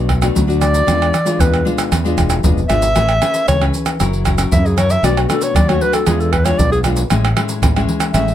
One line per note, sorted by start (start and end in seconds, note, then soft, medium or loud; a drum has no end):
0.00 0.28 B1 loud
0.00 0.33 B2 medium
0.09 pandeiro medium
0.09 tamborim medium
0.09 surdo medium
0.21 0.44 A3 medium
0.21 0.44 D4 medium
0.21 0.44 F#4 medium
0.21 pandeiro medium
0.21 tamborim medium
0.21 maracas medium
0.35 0.80 D2 medium
0.35 0.85 F#3 medium
0.35 pandeiro medium
0.35 maracas medium
0.35 surdo loud
0.47 0.83 A3 medium
0.47 0.83 D4 medium
0.47 0.83 F#4 medium
0.47 pandeiro soft
0.47 maracas soft
0.61 1.42 D5 medium
0.61 pandeiro medium
0.61 tamborim medium
0.61 maracas medium
0.74 pandeiro medium
0.74 maracas medium
0.86 1.10 E2 medium
0.86 1.37 E3 medium
0.86 1.12 G#3 medium
0.86 1.12 D4 medium
0.86 1.12 F4 medium
0.86 pandeiro medium
0.86 tamborim medium
0.86 maracas medium
0.86 surdo medium
1.02 pandeiro soft
1.02 tamborim medium
1.02 maracas soft
1.14 pandeiro medium
1.14 tamborim medium
1.14 maracas medium
1.25 1.61 G#3 medium
1.25 1.61 D4 medium
1.25 1.61 F4 medium
1.25 pandeiro medium
1.25 maracas medium
1.39 1.62 E2 medium
1.39 1.89 B2 medium
1.39 1.66 B4 medium
1.39 pandeiro medium
1.39 tamborim medium
1.39 maracas medium
1.39 surdo loud
1.54 pandeiro soft
1.54 tamborim medium
1.54 maracas soft
1.65 1.90 G#3 medium
1.65 1.90 D4 medium
1.65 1.90 F4 medium
1.65 pandeiro medium
1.78 pandeiro medium
1.78 tamborim medium
1.78 maracas medium
1.92 2.14 E2 loud
1.92 2.41 E3 medium
1.92 pandeiro medium
1.92 tamborim medium
1.92 maracas medium
1.92 surdo medium
2.04 2.39 G#3 medium
2.04 2.40 D4 medium
2.04 2.40 F4 medium
2.04 pandeiro soft
2.04 maracas soft
2.17 2.41 E1 medium
2.17 pandeiro medium
2.17 tamborim medium
2.17 maracas medium
2.17 surdo medium
2.30 pandeiro medium
2.30 tamborim medium
2.30 maracas medium
2.43 2.67 F1 medium
2.43 2.93 B2 medium
2.43 2.59 G#3 medium
2.43 2.59 D4 soft
2.43 2.59 F4 medium
2.43 pandeiro medium
2.43 maracas medium
2.43 surdo loud
2.58 pandeiro soft
2.58 maracas soft
2.68 2.93 G#1 medium
2.68 2.85 G#3 medium
2.68 2.85 D4 medium
2.68 2.85 F4 medium
2.68 3.43 E5 loud
2.68 pandeiro medium
2.68 tamborim medium
2.68 maracas medium
2.82 pandeiro medium
2.82 maracas medium
2.96 3.18 A1 loud
2.96 3.45 A3 medium
2.96 3.11 C#4 medium
2.96 3.11 G#4 medium
2.96 3.11 B4 medium
2.96 pandeiro medium
2.96 tamborim medium
2.96 maracas medium
2.96 surdo medium
3.09 pandeiro soft
3.09 tamborim medium
3.09 maracas soft
3.21 3.56 C#4 medium
3.21 3.57 G#4 medium
3.21 3.57 B4 medium
3.21 pandeiro medium
3.21 tamborim medium
3.21 maracas medium
3.34 pandeiro medium
3.34 maracas medium
3.48 3.70 C#2 medium
3.48 3.97 E3 medium
3.48 3.64 C#5 medium
3.48 pandeiro medium
3.48 tamborim medium
3.48 maracas medium
3.48 surdo loud
3.61 3.96 C#4 medium
3.61 3.96 G#4 medium
3.61 3.96 B4 medium
3.61 pandeiro soft
3.61 tamborim medium
3.61 maracas soft
3.74 pandeiro medium
3.74 maracas medium
3.86 pandeiro medium
3.86 tamborim medium
3.86 maracas medium
4.00 4.44 F#1 loud
4.00 4.49 F#3 medium
4.00 4.22 C#4 medium
4.00 4.22 E4 medium
4.00 4.22 A#4 medium
4.00 pandeiro medium
4.00 tamborim medium
4.00 maracas medium
4.00 surdo medium
4.13 pandeiro soft
4.13 maracas soft
4.25 4.34 C#4 medium
4.25 4.35 E4 medium
4.25 4.35 A#4 medium
4.25 pandeiro medium
4.25 tamborim medium
4.25 maracas medium
4.25 surdo medium
4.38 4.73 C#4 medium
4.38 4.73 E4 medium
4.38 4.73 A#4 medium
4.38 pandeiro medium
4.38 tamborim medium
4.38 maracas medium
4.51 4.96 F#2 medium
4.51 5.01 C#3 medium
4.51 4.68 E5 medium
4.51 pandeiro medium
4.51 maracas medium
4.51 surdo loud
4.66 4.80 G#4 medium
4.66 pandeiro soft
4.66 maracas soft
4.76 5.01 C#4 soft
4.76 5.01 E4 medium
4.76 5.01 A#4 medium
4.76 4.93 C#5 loud
4.76 pandeiro medium
4.76 tamborim medium
4.76 maracas medium
4.90 5.06 E5 medium
4.90 pandeiro medium
4.90 maracas medium
5.03 5.25 B1 loud
5.03 5.53 B2 medium
5.03 5.25 A3 medium
5.03 5.25 D4 medium
5.03 5.25 F#4 medium
5.03 5.21 D5 medium
5.03 pandeiro medium
5.03 tamborim medium
5.03 maracas medium
5.03 surdo medium
5.17 5.31 F#4 medium
5.17 pandeiro soft
5.17 tamborim medium
5.17 maracas soft
5.29 5.53 A3 medium
5.29 5.54 D4 medium
5.29 5.54 F#4 medium
5.29 5.45 A4 medium
5.29 pandeiro medium
5.29 tamborim medium
5.29 maracas medium
5.41 5.57 C#5 medium
5.41 pandeiro medium
5.41 maracas medium
5.54 5.77 D#2 medium
5.54 6.04 F#3 medium
5.54 5.70 D5 medium
5.54 pandeiro medium
5.54 tamborim medium
5.54 maracas medium
5.54 surdo loud
5.69 6.03 A3 medium
5.69 6.03 D4 medium
5.69 6.04 F#4 medium
5.69 5.84 C#5 medium
5.69 pandeiro soft
5.69 tamborim medium
5.69 maracas soft
5.81 5.95 B4 medium
5.81 pandeiro medium
5.93 6.09 A4 medium
5.93 pandeiro medium
5.93 tamborim medium
5.93 maracas medium
6.06 6.51 E2 loud
6.06 6.56 E3 medium
6.06 6.31 G#3 medium
6.06 6.32 D4 medium
6.06 6.32 F4 medium
6.06 6.22 G#4 medium
6.06 pandeiro medium
6.06 tamborim medium
6.06 maracas medium
6.06 surdo medium
6.20 6.34 A4 medium
6.20 pandeiro soft
6.20 maracas soft
6.32 6.47 B4 medium
6.32 pandeiro medium
6.32 tamborim medium
6.32 surdo medium
6.44 6.80 G#3 medium
6.44 6.80 D4 medium
6.44 6.80 F4 medium
6.44 6.60 C#5 medium
6.44 pandeiro medium
6.44 tamborim medium
6.44 maracas medium
6.58 7.03 B1 loud
6.58 7.08 B2 medium
6.58 6.71 D5 medium
6.58 pandeiro medium
6.58 maracas medium
6.58 surdo loud
6.72 6.80 G#4 medium
6.72 pandeiro soft
6.72 maracas soft
6.84 7.01 G#3 medium
6.84 7.01 D4 medium
6.84 7.01 F4 medium
6.84 pandeiro medium
6.84 tamborim medium
6.84 maracas medium
6.96 pandeiro medium
6.96 maracas medium
7.10 7.33 A1 medium
7.10 7.60 A2 medium
7.10 7.26 G#3 medium
7.10 7.26 C#4 medium
7.10 7.26 E4 medium
7.10 pandeiro medium
7.10 tamborim medium
7.10 maracas medium
7.10 surdo medium
7.25 pandeiro soft
7.25 tamborim medium
7.25 maracas soft
7.36 7.71 G#3 medium
7.36 7.71 C#4 medium
7.36 7.72 E4 medium
7.36 pandeiro medium
7.36 tamborim medium
7.49 pandeiro medium
7.49 maracas medium
7.62 7.84 A1 medium
7.62 8.12 E3 medium
7.62 pandeiro medium
7.62 tamborim medium
7.62 maracas medium
7.62 surdo loud
7.76 8.10 G#3 medium
7.76 8.11 C#4 medium
7.76 8.11 E4 medium
7.76 pandeiro soft
7.76 tamborim medium
7.76 maracas soft
7.89 pandeiro medium
8.00 pandeiro medium
8.00 tamborim medium
8.00 maracas medium
8.14 8.35 A1 loud
8.14 8.35 A2 medium
8.14 8.30 G#3 medium
8.14 8.30 C#4 medium
8.14 8.30 E4 medium
8.14 8.35 E5 medium
8.14 pandeiro medium
8.14 tamborim medium
8.14 maracas medium
8.14 surdo medium
8.28 pandeiro soft
8.28 maracas soft